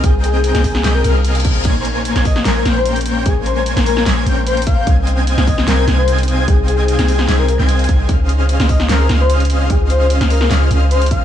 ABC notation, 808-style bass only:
X:1
M:4/4
L:1/16
Q:1/4=149
K:Fm
V:1 name="808-style bass" clef=bass
C,,4- C,, C,,3 C,,2 C,,6 | B,,,4- B,,, B,,,3 B,,,2 B,,,6 | B,,,4- B,,, B,,,3 B,,,2 B,,,6 | C,,4- C,, C,,3 C,,2 C,,6 |
C,,4- C,, C,,3 C,,3 C,,3 C,,2 | D,,4- D,, D,,3 D,,2 D,,6 | D,,4- D,, D,,3 D,,2 D,,6 |]